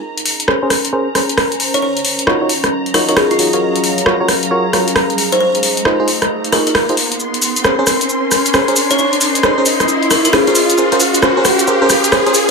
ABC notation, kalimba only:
X:1
M:4/4
L:1/16
Q:"Swing 16ths" 1/4=134
K:Bbm
V:1 name="Kalimba"
z12 z3 d | d z8 z B B A F3 | z12 z3 c | c z8 z B B z4 |
z12 z3 d | d z8 z B B A F3 | z16 |]